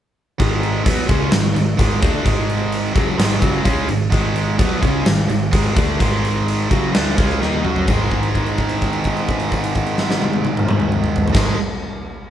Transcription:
0.40 0.83 G#1 medium
0.40 0.85 G#2 medium
0.40 0.86 D#3 loud
0.40 0.86 G#3 loud
0.40 kick medium
0.40 crash medium
0.63 crash medium
0.86 1.08 B1 medium
0.86 1.09 B2 loud
0.86 1.09 F#3 loud
0.86 1.09 B3 loud
0.86 kick loud
0.86 crash medium
1.09 1.31 C#2 loud
1.09 1.32 C#3 loud
1.09 1.32 G#3 medium
1.09 1.33 C#4 loud
1.09 kick loud
1.09 crash medium
1.32 1.54 G#1 medium
1.32 1.51 G#2 medium
1.32 1.51 D#3 medium
1.32 snare loud
1.32 crash medium
1.55 1.78 G#1 medium
1.55 1.74 G#2 medium
1.55 1.74 D#3 medium
1.55 crash medium
1.79 2.01 G#1 medium
1.79 2.01 G#2 medium
1.79 2.02 D#3 loud
1.79 2.02 G#3 loud
1.79 kick loud
1.79 crash medium
2.02 2.24 D2 medium
2.02 2.25 D3 medium
2.02 2.25 A3 medium
2.02 2.25 D4 medium
2.02 kick loud
2.02 crash medium
2.25 2.91 G#1 medium
2.25 2.94 G#2 loud
2.25 2.95 D#3 loud
2.25 2.95 G#3 loud
2.25 kick loud
2.25 crash medium
2.49 crash medium
2.72 crash medium
2.95 3.17 F#1 medium
2.95 3.17 F#2 medium
2.95 3.18 C#3 medium
2.95 3.19 F#3 loud
2.95 kick loud
2.95 crash medium
3.18 3.40 G#1 medium
3.18 3.41 G#2 loud
3.18 3.41 D#3 medium
3.18 3.41 G#3 loud
3.18 snare loud
3.18 crash medium
3.42 3.64 F#1 loud
3.42 3.65 F#2 medium
3.42 3.64 C#3 loud
3.42 3.65 F#3 loud
3.42 kick loud
3.42 crash medium
3.65 3.87 C#2 loud
3.65 3.88 C#3 medium
3.65 3.88 G#3 loud
3.65 3.89 C#4 medium
3.65 kick loud
3.65 crash medium
3.88 4.11 G#1 medium
3.88 4.08 G#2 medium
3.88 4.08 D#3 medium
3.88 crash medium
4.12 4.56 G#1 medium
4.12 4.58 G#2 medium
4.12 4.59 D#3 loud
4.12 4.59 G#3 medium
4.12 kick loud
4.12 crash medium
4.36 crash medium
4.59 4.81 B1 loud
4.59 4.82 B2 loud
4.59 4.82 F#3 loud
4.59 4.82 B3 loud
4.59 kick loud
4.59 crash medium
4.83 5.04 C#2 loud
4.83 5.06 C#3 medium
4.83 5.06 G#3 medium
4.83 5.06 C#4 loud
4.83 kick loud
4.83 crash medium
5.06 5.28 G#1 medium
5.06 5.25 G#2 medium
5.06 5.25 D#3 medium
5.06 snare loud
5.06 crash medium
5.29 5.51 G#1 medium
5.29 5.49 G#2 medium
5.29 5.49 D#3 medium
5.29 crash medium
5.53 5.75 G#1 loud
5.53 5.76 G#2 loud
5.53 5.77 D#3 loud
5.53 5.77 G#3 loud
5.53 kick loud
5.53 crash medium
5.76 5.98 D2 loud
5.76 6.00 D3 loud
5.76 6.00 A3 medium
5.76 6.00 D4 loud
5.76 kick loud
5.76 crash medium
6.00 6.66 G#1 medium
6.00 6.69 G#2 loud
6.00 6.70 D#3 loud
6.00 6.70 G#3 loud
6.00 kick medium
6.00 crash medium
6.25 crash medium
6.48 crash medium
6.70 6.93 F#1 loud
6.70 6.93 F#2 medium
6.70 6.93 C#3 medium
6.70 6.93 F#3 loud
6.70 kick loud
6.70 crash medium
6.94 7.16 D2 medium
6.94 7.16 D3 medium
6.94 7.16 A3 loud
6.94 7.17 D4 loud
6.94 snare loud
6.94 crash medium
7.16 7.40 C#2 loud
7.16 7.40 C#3 loud
7.16 7.40 G#3 loud
7.16 7.40 C#4 loud
7.16 kick loud
7.16 crash medium
7.30 snare soft
7.41 7.63 D#2 medium
7.41 7.63 D#3 medium
7.41 7.64 A#3 medium
7.41 7.64 D#4 loud
7.41 snare medium
7.53 high tom medium
7.64 7.86 F#2 medium
7.64 7.87 F#3 medium
7.64 7.87 C#4 medium
7.64 7.88 F#4 medium
7.64 mid tom loud
7.76 floor tom medium
7.87 11.25 G#1 medium
7.87 11.33 G#2 medium
7.87 11.35 D#3 medium
7.87 kick medium
7.87 crash medium
7.91 11.37 G#3 loud
8.11 kick medium
8.11 crash soft
8.23 crash soft
8.35 kick medium
8.35 crash soft
8.46 crash soft
8.58 kick medium
8.58 crash soft
8.69 crash soft
8.82 kick medium
8.82 crash medium
8.93 crash soft
9.04 kick medium
9.04 crash medium
9.17 crash soft
9.28 kick medium
9.28 crash medium
9.40 crash medium
9.52 kick medium
9.52 crash medium
9.64 crash medium
9.75 kick medium
9.75 crash soft
9.86 crash medium
9.98 snare medium
10.11 snare medium
10.22 high tom medium
10.33 high tom medium
10.45 high tom loud
10.57 mid tom loud
10.68 mid tom loud
10.80 mid tom loud
10.92 mid tom loud
11.04 mid tom loud
11.16 floor tom loud
11.28 floor tom loud
11.33 11.54 G#1 loud
11.33 11.55 G#2 medium
11.33 11.56 D#3 medium
11.33 11.57 G#3 medium
11.33 kick loud
11.33 snare loud
11.33 crash loud

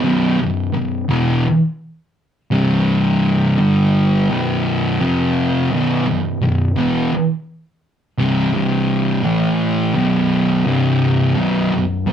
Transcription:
0.02 0.38 B1 loud
0.02 0.38 F#2 loud
0.02 0.38 B2 loud
0.39 0.68 B1 medium
0.39 0.68 F#2 medium
0.73 1.03 B1 medium
0.73 1.03 F#2 medium
1.09 1.44 E2 medium
1.09 1.44 B2 loud
1.09 1.45 E3 loud
2.51 3.57 C2 loud
2.51 3.57 G2 loud
2.51 3.57 C3 loud
3.58 4.28 G2 loud
3.58 4.29 D3 loud
3.58 4.29 G3 loud
4.30 4.99 B1 medium
4.30 5.00 F#2 loud
4.30 5.00 B2 loud
5.00 5.70 F2 loud
5.00 5.70 C3 loud
5.00 5.71 F3 loud
5.71 6.05 B1 loud
5.71 6.05 F#2 loud
5.71 6.06 B2 loud
6.07 6.35 B1 medium
6.07 6.35 F#2 medium
6.41 6.70 B1 medium
6.41 6.70 F#2 medium
6.76 7.11 E2 loud
6.76 7.11 B2 medium
6.76 7.12 E3 loud
8.18 8.52 C2 loud
8.18 8.52 G2 loud
8.18 8.53 C3 loud
8.53 9.22 C2 loud
8.53 9.23 G2 loud
8.53 9.24 C3 loud
9.23 9.94 A2 loud
9.23 9.94 E3 loud
9.23 9.95 A3 loud
9.95 10.64 B1 medium
9.95 10.65 F#2 loud
9.95 10.66 B2 medium
10.65 11.35 C2 loud
10.65 11.36 G2 loud
10.65 11.37 C3 medium
11.36 11.71 B1 loud
11.36 11.71 F#2 loud
11.36 11.72 B2 loud
11.72 12.01 B1 medium
11.72 12.01 F#2 medium
12.07 12.13 B1 medium
12.07 12.13 F#2 medium

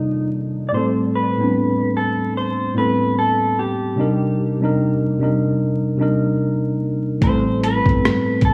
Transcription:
0.00 0.75 C3 medium
0.00 0.75 D#3 medium
0.00 0.73 G3 medium
0.00 0.75 D4 medium
0.00 0.29 D#4 medium
0.00 0.75 D#4 medium
0.00 0.75 F4 medium
0.00 0.75 A4 medium
0.00 0.31 D5 medium
0.69 1.12 A2 medium
0.69 0.74 D5 medium
0.73 1.13 G3 medium
0.73 1.14 A3 medium
0.73 1.14 C4 medium
0.73 1.15 A4 medium
0.73 0.85 C5 medium
1.15 1.96 B4 medium
1.38 2.27 A2 medium
1.38 2.28 G3 medium
1.38 2.29 B3 medium
1.38 2.29 C4 medium
1.43 2.30 D4 medium
1.97 2.34 A4 medium
2.37 2.74 C5 medium
2.74 3.54 A2 medium
2.74 3.55 G3 medium
2.74 3.55 B3 medium
2.74 3.56 C4 medium
2.74 3.15 B4 medium
2.79 3.56 A4 medium
3.19 3.59 A4 medium
3.59 6.38 G4 medium
3.96 4.36 C3 medium
3.96 4.37 G3 medium
3.96 4.37 D4 medium
3.96 4.38 D#4 medium
4.01 4.39 A#4 medium
4.60 5.00 C3 medium
4.60 5.01 G3 medium
4.60 5.01 D4 medium
4.60 5.02 D#4 medium
4.65 5.02 A#4 medium
5.19 5.74 C3 medium
5.19 5.74 G3 medium
5.19 5.75 D4 medium
5.19 5.75 D#4 medium
5.24 5.76 A#4 medium
5.97 6.78 C3 medium
5.97 6.78 G3 medium
5.97 6.79 D4 medium
5.97 6.80 D#4 medium
6.02 6.80 A#4 medium
7.21 7.78 A1 loud
7.21 7.61 A2 medium
7.21 7.62 G3 medium
7.21 7.62 A3 medium
7.21 7.63 C4 medium
7.21 7.64 C5 loud
7.21 kick loud
7.21 closed hi-hat medium
7.26 7.64 A4 loud
7.63 8.45 B4 loud
7.63 closed hi-hat medium
7.85 8.01 G1 loud
7.85 8.54 A2 medium
7.85 8.54 G3 medium
7.85 8.54 B3 medium
7.85 8.54 C4 medium
7.85 kick medium
7.89 8.54 A4 medium
7.89 closed hi-hat soft
8.05 cross-stick loud
8.05 closed hi-hat medium
8.41 8.54 A1 medium
8.41 8.54 A4 loud
8.41 kick medium
8.41 closed hi-hat medium

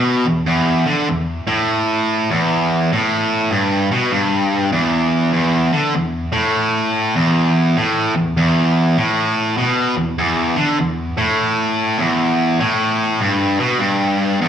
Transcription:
0.00 0.25 B2 loud
0.25 0.44 E2 medium
0.47 0.85 E2 medium
0.87 1.08 D3 loud
1.09 1.40 E2 medium
1.47 2.29 A2 medium
2.30 2.90 E2 medium
2.92 3.51 A2 medium
3.51 3.88 G2 medium
3.92 4.12 B2 medium
4.12 4.72 G2 loud
4.72 5.32 E2 medium
5.34 5.71 E2 medium
5.73 5.94 D3 loud
5.95 6.25 E2 medium
6.33 7.14 A2 medium
7.16 7.75 E2 medium
7.77 8.13 A2 medium
8.15 8.32 E2 medium
8.37 8.96 E2 medium
8.98 9.57 A2 loud
9.58 9.95 B2 medium
9.97 10.14 E2 medium
10.18 10.55 E2 medium
10.56 10.78 D3 loud
10.79 11.09 E2 medium
11.18 11.99 A2 medium
11.98 12.59 E2 medium
12.59 13.19 A2 medium
13.21 13.58 G2 medium
13.59 13.80 B2 medium
13.79 14.40 G2 medium
14.42 14.48 E2 loud

